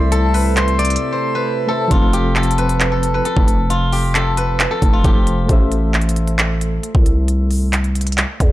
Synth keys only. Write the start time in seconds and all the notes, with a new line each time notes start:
Already playing: A3 C4 A4 E5
1.67 A3 A4 C5 E5
1.88 F3 F4
1.92 C4 A4
5.03 F3 F4 A4 C5
5.46 A3 A4
5.50 C5 E5